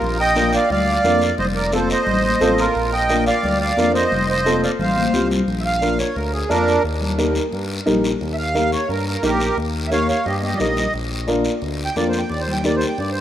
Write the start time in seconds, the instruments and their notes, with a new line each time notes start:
Already playing: accordion F4 A#4
0.02 analog synth bass A#1, long guiro
0.20 accordion D#5 G5
0.35 upright piano D4 F4 A#4, high conga, short guiro
0.53 accordion D5 F5, short guiro
0.70 analog synth bass D2, accordion D5 F5, low conga, long guiro
1.04 analog synth bass F2, upright piano D4 F4 A#4, high conga, short guiro
1.22 short guiro
1.38 analog synth bass F1, accordion C5 D#5, low conga, long guiro
1.56 accordion A#4 D5
1.72 upright piano C4 F4 A4, accordion A4 C5, high conga, short guiro
1.90 accordion C5 D#5, short guiro
2.07 analog synth bass A1, low conga, long guiro
2.24 high conga
2.40 analog synth bass A1, upright piano C4 F4 A4, high conga, low conga, short guiro
2.58 accordion F4 A#4, short guiro
2.75 analog synth bass A#1, long guiro
2.93 accordion D#5 G5
3.09 upright piano D4 F4 A#4, high conga, short guiro
3.26 accordion D5 F5, short guiro
3.43 analog synth bass D2, low conga, long guiro
3.60 accordion D5 F5
3.77 analog synth bass F2, upright piano D4 F4 A#4, high conga, short guiro
3.94 accordion C5 D#5, short guiro
4.11 analog synth bass F1, low conga, long guiro
4.30 accordion C5 D#5
4.45 upright piano C4 F4 A4, high conga, short guiro
4.64 accordion D5 F5, short guiro
4.79 analog synth bass A1, accordion C5 F5, low conga, long guiro
4.96 high conga
5.13 analog synth bass C2, upright piano C4 F4 G4, low conga, short guiro
5.31 low conga, short guiro
5.48 analog synth bass A#1, long guiro
5.61 accordion E5
5.65 accordion F5
5.81 upright piano D4 F4 A#4, high conga, short guiro
5.99 accordion C#5, short guiro
6.15 analog synth bass D2, accordion A#4, long guiro
6.33 accordion G#4
6.49 analog synth bass F2, upright piano D4 F4 A#4, accordion D4 A#4, high conga, short guiro
6.68 short guiro
6.84 analog synth bass D#2, long guiro
7.01 low conga
7.18 upright piano D#4 G4 A#4, high conga, short guiro
7.35 short guiro
7.53 analog synth bass G2, long guiro
7.86 analog synth bass A#1, upright piano D#4 G4 A#4, high conga, low conga, short guiro
8.04 short guiro
8.21 analog synth bass D#2, long guiro
8.33 accordion E5
8.38 accordion F5
8.54 upright piano D#4 G4 A#4, high conga, short guiro
8.72 accordion C#5, short guiro
8.89 analog synth bass G2, accordion A#4, long guiro
9.07 accordion A#4
9.22 analog synth bass A#1, upright piano D#4 G4 A#4, accordion G4 A#4, high conga, short guiro
9.40 short guiro
9.57 analog synth bass D#2, long guiro
9.88 upright piano D#4 G4 A#4, accordion C#5 E5, high conga
9.92 accordion F5, short guiro
10.09 accordion C#5 F5, short guiro
10.25 analog synth bass G2, accordion G4 D#5, long guiro
10.42 accordion G4 D#5, high conga
10.54 accordion D5, low conga
10.59 analog synth bass A#1, upright piano D#4 G4 A#4, accordion D#5, short guiro
10.77 low conga, short guiro
10.94 analog synth bass A#1, long guiro
11.27 upright piano D4 F4 A#4, high conga, short guiro
11.44 short guiro
11.62 analog synth bass D2, long guiro
11.85 accordion G5
11.96 analog synth bass F2, upright piano D4 F4 A#4, accordion D5, high conga, short guiro
12.08 accordion C5
12.13 short guiro
12.18 accordion G5
12.30 analog synth bass D#2, accordion D5, long guiro
12.41 accordion C5
12.47 low conga
12.52 accordion G5
12.64 upright piano D#4 G4 A#4, accordion D5, high conga, short guiro
12.76 accordion C5
12.81 short guiro
12.88 accordion G5
12.98 analog synth bass G2, accordion D5, long guiro
13.12 accordion C5